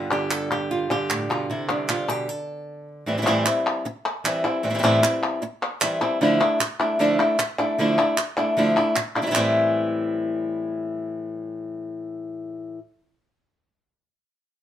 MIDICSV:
0, 0, Header, 1, 4, 480
1, 0, Start_track
1, 0, Key_signature, 0, "minor"
1, 0, Tempo, 392927
1, 1825, Time_signature, 4, 2, 24, 8
1, 17866, End_track
2, 0, Start_track
2, 0, Title_t, "Nylon-string guitar"
2, 0, Program_c, 0, 24
2, 0, Note_on_c, 0, 43, 77
2, 0, Note_on_c, 0, 59, 51
2, 0, Note_on_c, 0, 65, 90
2, 137, Note_on_c, 0, 50, 71
2, 154, Note_on_c, 0, 67, 88
2, 389, Note_off_c, 0, 67, 0
2, 389, Note_on_c, 0, 69, 87
2, 625, Note_off_c, 0, 69, 0
2, 626, Note_off_c, 0, 65, 0
2, 632, Note_on_c, 0, 67, 90
2, 867, Note_on_c, 0, 65, 99
2, 1092, Note_off_c, 0, 50, 0
2, 1097, Note_off_c, 0, 67, 0
2, 1105, Note_on_c, 0, 50, 67
2, 1115, Note_on_c, 0, 67, 102
2, 1343, Note_on_c, 0, 45, 69
2, 1579, Note_off_c, 0, 45, 0
2, 1584, Note_on_c, 0, 47, 71
2, 1587, Note_off_c, 0, 65, 0
2, 1606, Note_on_c, 0, 65, 83
2, 1797, Note_off_c, 0, 43, 0
2, 1804, Note_off_c, 0, 59, 0
2, 1824, Note_off_c, 0, 47, 0
2, 1829, Note_on_c, 0, 48, 81
2, 1830, Note_off_c, 0, 67, 0
2, 1836, Note_off_c, 0, 65, 0
2, 1841, Note_on_c, 0, 64, 96
2, 2065, Note_on_c, 0, 55, 74
2, 2079, Note_on_c, 0, 62, 87
2, 2296, Note_off_c, 0, 48, 0
2, 2311, Note_on_c, 0, 48, 66
2, 2315, Note_off_c, 0, 64, 0
2, 2322, Note_on_c, 0, 65, 89
2, 2537, Note_off_c, 0, 48, 0
2, 2541, Note_on_c, 0, 47, 69
2, 2559, Note_off_c, 0, 65, 0
2, 2559, Note_on_c, 0, 67, 93
2, 2785, Note_off_c, 0, 47, 0
2, 2788, Note_off_c, 0, 55, 0
2, 2795, Note_off_c, 0, 62, 0
2, 2796, Note_off_c, 0, 67, 0
2, 2796, Note_on_c, 0, 69, 88
2, 3514, Note_off_c, 0, 69, 0
2, 3742, Note_on_c, 0, 45, 77
2, 3745, Note_off_c, 0, 50, 0
2, 3750, Note_on_c, 0, 52, 78
2, 3755, Note_on_c, 0, 55, 85
2, 3762, Note_on_c, 0, 60, 77
2, 3766, Note_on_c, 0, 64, 94
2, 3865, Note_off_c, 0, 52, 0
2, 3870, Note_off_c, 0, 55, 0
2, 3876, Note_off_c, 0, 60, 0
2, 3877, Note_off_c, 0, 64, 0
2, 3879, Note_on_c, 0, 52, 61
2, 3885, Note_on_c, 0, 55, 59
2, 3890, Note_on_c, 0, 60, 64
2, 3892, Note_on_c, 0, 64, 59
2, 3918, Note_off_c, 0, 52, 0
2, 3926, Note_off_c, 0, 55, 0
2, 3930, Note_off_c, 0, 60, 0
2, 3933, Note_on_c, 0, 52, 74
2, 3934, Note_off_c, 0, 64, 0
2, 3940, Note_on_c, 0, 55, 82
2, 3944, Note_on_c, 0, 60, 79
2, 3948, Note_on_c, 0, 64, 77
2, 3974, Note_off_c, 0, 45, 0
2, 3978, Note_off_c, 0, 52, 0
2, 3983, Note_off_c, 0, 55, 0
2, 3987, Note_off_c, 0, 60, 0
2, 3989, Note_on_c, 0, 45, 87
2, 3990, Note_off_c, 0, 64, 0
2, 3992, Note_on_c, 0, 52, 88
2, 3998, Note_on_c, 0, 55, 88
2, 4001, Note_on_c, 0, 60, 101
2, 4004, Note_on_c, 0, 64, 95
2, 4204, Note_off_c, 0, 64, 0
2, 4219, Note_on_c, 0, 64, 62
2, 4221, Note_off_c, 0, 45, 0
2, 4222, Note_off_c, 0, 52, 0
2, 4222, Note_off_c, 0, 60, 0
2, 4225, Note_off_c, 0, 55, 0
2, 4236, Note_on_c, 0, 60, 50
2, 4247, Note_on_c, 0, 55, 45
2, 4696, Note_off_c, 0, 64, 0
2, 4698, Note_off_c, 0, 55, 0
2, 4702, Note_off_c, 0, 60, 0
2, 5182, Note_on_c, 0, 52, 66
2, 5188, Note_on_c, 0, 55, 64
2, 5197, Note_on_c, 0, 60, 69
2, 5206, Note_on_c, 0, 64, 69
2, 5411, Note_off_c, 0, 64, 0
2, 5418, Note_off_c, 0, 52, 0
2, 5421, Note_off_c, 0, 55, 0
2, 5425, Note_off_c, 0, 60, 0
2, 5425, Note_on_c, 0, 64, 62
2, 5438, Note_on_c, 0, 60, 53
2, 5450, Note_on_c, 0, 55, 48
2, 5656, Note_off_c, 0, 55, 0
2, 5658, Note_on_c, 0, 45, 89
2, 5659, Note_off_c, 0, 64, 0
2, 5660, Note_off_c, 0, 60, 0
2, 5664, Note_on_c, 0, 52, 86
2, 5671, Note_on_c, 0, 55, 86
2, 5675, Note_on_c, 0, 60, 87
2, 5682, Note_on_c, 0, 64, 82
2, 5723, Note_off_c, 0, 52, 0
2, 5730, Note_off_c, 0, 55, 0
2, 5734, Note_off_c, 0, 60, 0
2, 5737, Note_off_c, 0, 64, 0
2, 5737, Note_on_c, 0, 52, 53
2, 5744, Note_on_c, 0, 55, 55
2, 5748, Note_on_c, 0, 60, 59
2, 5752, Note_on_c, 0, 64, 69
2, 5778, Note_off_c, 0, 52, 0
2, 5785, Note_off_c, 0, 55, 0
2, 5787, Note_off_c, 0, 60, 0
2, 5792, Note_off_c, 0, 64, 0
2, 5792, Note_on_c, 0, 52, 72
2, 5799, Note_on_c, 0, 55, 72
2, 5802, Note_on_c, 0, 60, 79
2, 5807, Note_on_c, 0, 64, 71
2, 5832, Note_off_c, 0, 52, 0
2, 5839, Note_off_c, 0, 55, 0
2, 5841, Note_off_c, 0, 60, 0
2, 5846, Note_off_c, 0, 64, 0
2, 5847, Note_on_c, 0, 52, 84
2, 5854, Note_on_c, 0, 55, 90
2, 5855, Note_on_c, 0, 60, 87
2, 5861, Note_on_c, 0, 64, 77
2, 5886, Note_off_c, 0, 45, 0
2, 5892, Note_off_c, 0, 52, 0
2, 5895, Note_off_c, 0, 55, 0
2, 5899, Note_off_c, 0, 60, 0
2, 5900, Note_on_c, 0, 45, 96
2, 5901, Note_off_c, 0, 64, 0
2, 5907, Note_on_c, 0, 52, 87
2, 5910, Note_on_c, 0, 55, 92
2, 5913, Note_on_c, 0, 60, 104
2, 5916, Note_on_c, 0, 64, 98
2, 6124, Note_off_c, 0, 64, 0
2, 6135, Note_off_c, 0, 60, 0
2, 6137, Note_off_c, 0, 45, 0
2, 6139, Note_on_c, 0, 64, 54
2, 6140, Note_off_c, 0, 52, 0
2, 6141, Note_off_c, 0, 55, 0
2, 6150, Note_on_c, 0, 60, 56
2, 6163, Note_on_c, 0, 55, 45
2, 6613, Note_off_c, 0, 55, 0
2, 6615, Note_off_c, 0, 60, 0
2, 6616, Note_off_c, 0, 64, 0
2, 7102, Note_on_c, 0, 52, 62
2, 7109, Note_on_c, 0, 55, 66
2, 7116, Note_on_c, 0, 60, 66
2, 7126, Note_on_c, 0, 64, 66
2, 7328, Note_off_c, 0, 64, 0
2, 7337, Note_off_c, 0, 52, 0
2, 7339, Note_off_c, 0, 60, 0
2, 7340, Note_off_c, 0, 55, 0
2, 7342, Note_on_c, 0, 64, 58
2, 7353, Note_on_c, 0, 60, 58
2, 7364, Note_on_c, 0, 55, 52
2, 7577, Note_off_c, 0, 64, 0
2, 7582, Note_off_c, 0, 60, 0
2, 7585, Note_on_c, 0, 50, 86
2, 7588, Note_off_c, 0, 55, 0
2, 7590, Note_on_c, 0, 53, 94
2, 7595, Note_on_c, 0, 57, 96
2, 7602, Note_on_c, 0, 62, 86
2, 7607, Note_on_c, 0, 64, 93
2, 7805, Note_off_c, 0, 64, 0
2, 7818, Note_off_c, 0, 50, 0
2, 7819, Note_off_c, 0, 62, 0
2, 7820, Note_on_c, 0, 64, 63
2, 7821, Note_off_c, 0, 53, 0
2, 7823, Note_off_c, 0, 57, 0
2, 7834, Note_on_c, 0, 62, 56
2, 7845, Note_on_c, 0, 57, 49
2, 8054, Note_off_c, 0, 57, 0
2, 8055, Note_off_c, 0, 64, 0
2, 8057, Note_off_c, 0, 62, 0
2, 8302, Note_on_c, 0, 64, 57
2, 8318, Note_on_c, 0, 62, 61
2, 8331, Note_on_c, 0, 57, 50
2, 8536, Note_off_c, 0, 64, 0
2, 8537, Note_off_c, 0, 57, 0
2, 8541, Note_on_c, 0, 50, 88
2, 8544, Note_off_c, 0, 62, 0
2, 8546, Note_on_c, 0, 53, 88
2, 8552, Note_on_c, 0, 57, 93
2, 8558, Note_on_c, 0, 62, 106
2, 8564, Note_on_c, 0, 64, 103
2, 8766, Note_off_c, 0, 64, 0
2, 8776, Note_off_c, 0, 50, 0
2, 8778, Note_off_c, 0, 53, 0
2, 8781, Note_off_c, 0, 57, 0
2, 8781, Note_on_c, 0, 64, 61
2, 8784, Note_off_c, 0, 62, 0
2, 8797, Note_on_c, 0, 62, 55
2, 8807, Note_on_c, 0, 57, 56
2, 9015, Note_off_c, 0, 64, 0
2, 9017, Note_off_c, 0, 57, 0
2, 9020, Note_off_c, 0, 62, 0
2, 9265, Note_on_c, 0, 64, 62
2, 9277, Note_on_c, 0, 62, 62
2, 9290, Note_on_c, 0, 57, 54
2, 9497, Note_off_c, 0, 64, 0
2, 9503, Note_off_c, 0, 62, 0
2, 9509, Note_off_c, 0, 57, 0
2, 9511, Note_on_c, 0, 50, 80
2, 9518, Note_on_c, 0, 53, 89
2, 9524, Note_on_c, 0, 57, 92
2, 9530, Note_on_c, 0, 62, 92
2, 9538, Note_on_c, 0, 64, 98
2, 9731, Note_off_c, 0, 64, 0
2, 9739, Note_off_c, 0, 50, 0
2, 9743, Note_off_c, 0, 53, 0
2, 9745, Note_off_c, 0, 62, 0
2, 9745, Note_on_c, 0, 64, 61
2, 9746, Note_off_c, 0, 57, 0
2, 9760, Note_on_c, 0, 62, 58
2, 9771, Note_on_c, 0, 57, 47
2, 9977, Note_off_c, 0, 64, 0
2, 9982, Note_off_c, 0, 57, 0
2, 9984, Note_off_c, 0, 62, 0
2, 10230, Note_on_c, 0, 64, 61
2, 10246, Note_on_c, 0, 62, 61
2, 10258, Note_on_c, 0, 57, 48
2, 10459, Note_off_c, 0, 64, 0
2, 10466, Note_off_c, 0, 62, 0
2, 10466, Note_on_c, 0, 50, 91
2, 10468, Note_off_c, 0, 57, 0
2, 10475, Note_on_c, 0, 53, 98
2, 10482, Note_on_c, 0, 57, 96
2, 10488, Note_on_c, 0, 62, 86
2, 10490, Note_on_c, 0, 64, 94
2, 10696, Note_off_c, 0, 50, 0
2, 10698, Note_off_c, 0, 64, 0
2, 10701, Note_off_c, 0, 53, 0
2, 10705, Note_off_c, 0, 57, 0
2, 10707, Note_off_c, 0, 62, 0
2, 10713, Note_on_c, 0, 64, 65
2, 10725, Note_on_c, 0, 62, 56
2, 10736, Note_on_c, 0, 57, 54
2, 10939, Note_off_c, 0, 64, 0
2, 10946, Note_off_c, 0, 62, 0
2, 10947, Note_off_c, 0, 57, 0
2, 11188, Note_on_c, 0, 64, 58
2, 11200, Note_on_c, 0, 62, 52
2, 11211, Note_on_c, 0, 57, 50
2, 11261, Note_on_c, 0, 52, 50
2, 11262, Note_off_c, 0, 64, 0
2, 11263, Note_off_c, 0, 57, 0
2, 11265, Note_off_c, 0, 62, 0
2, 11268, Note_on_c, 0, 55, 54
2, 11270, Note_on_c, 0, 60, 58
2, 11276, Note_on_c, 0, 64, 57
2, 11301, Note_off_c, 0, 52, 0
2, 11305, Note_off_c, 0, 55, 0
2, 11312, Note_off_c, 0, 60, 0
2, 11316, Note_off_c, 0, 64, 0
2, 11316, Note_on_c, 0, 52, 61
2, 11320, Note_on_c, 0, 55, 68
2, 11327, Note_on_c, 0, 60, 69
2, 11331, Note_on_c, 0, 64, 67
2, 11358, Note_off_c, 0, 52, 0
2, 11362, Note_off_c, 0, 55, 0
2, 11367, Note_off_c, 0, 60, 0
2, 11370, Note_off_c, 0, 64, 0
2, 11372, Note_on_c, 0, 52, 81
2, 11377, Note_on_c, 0, 55, 83
2, 11381, Note_on_c, 0, 60, 77
2, 11385, Note_on_c, 0, 64, 86
2, 11414, Note_off_c, 0, 52, 0
2, 11420, Note_off_c, 0, 55, 0
2, 11426, Note_off_c, 0, 60, 0
2, 11426, Note_off_c, 0, 64, 0
2, 11426, Note_on_c, 0, 45, 89
2, 11429, Note_on_c, 0, 52, 82
2, 11435, Note_on_c, 0, 55, 86
2, 11441, Note_on_c, 0, 60, 91
2, 11441, Note_on_c, 0, 64, 99
2, 15615, Note_off_c, 0, 45, 0
2, 15618, Note_off_c, 0, 52, 0
2, 15624, Note_off_c, 0, 55, 0
2, 15630, Note_off_c, 0, 60, 0
2, 15630, Note_off_c, 0, 64, 0
2, 17866, End_track
3, 0, Start_track
3, 0, Title_t, "Muted nylon-string guitar strokes"
3, 4706, Note_on_c, 9, 29, 78
3, 4828, Note_off_c, 9, 29, 0
3, 6619, Note_on_c, 9, 29, 78
3, 6742, Note_off_c, 9, 29, 0
3, 8063, Note_on_c, 9, 29, 70
3, 8186, Note_off_c, 9, 29, 0
3, 9026, Note_on_c, 9, 29, 75
3, 9148, Note_off_c, 9, 29, 0
3, 9986, Note_on_c, 9, 29, 70
3, 10109, Note_off_c, 9, 29, 0
3, 10956, Note_on_c, 9, 29, 66
3, 11078, Note_off_c, 9, 29, 0
3, 17866, End_track
4, 0, Start_track
4, 0, Title_t, "Drums"
4, 377, Note_on_c, 9, 39, 79
4, 499, Note_off_c, 9, 39, 0
4, 1346, Note_on_c, 9, 39, 90
4, 1468, Note_off_c, 9, 39, 0
4, 2311, Note_on_c, 9, 39, 81
4, 2433, Note_off_c, 9, 39, 0
4, 4226, Note_on_c, 9, 39, 89
4, 4348, Note_off_c, 9, 39, 0
4, 5198, Note_on_c, 9, 39, 87
4, 5320, Note_off_c, 9, 39, 0
4, 6151, Note_on_c, 9, 39, 93
4, 6273, Note_off_c, 9, 39, 0
4, 7103, Note_on_c, 9, 39, 92
4, 7225, Note_off_c, 9, 39, 0
4, 7348, Note_on_c, 9, 39, 53
4, 7470, Note_off_c, 9, 39, 0
4, 8070, Note_on_c, 9, 39, 91
4, 8192, Note_off_c, 9, 39, 0
4, 9031, Note_on_c, 9, 39, 88
4, 9153, Note_off_c, 9, 39, 0
4, 9987, Note_on_c, 9, 39, 87
4, 10109, Note_off_c, 9, 39, 0
4, 10944, Note_on_c, 9, 39, 86
4, 11066, Note_off_c, 9, 39, 0
4, 11422, Note_on_c, 9, 39, 105
4, 11544, Note_off_c, 9, 39, 0
4, 17866, End_track
0, 0, End_of_file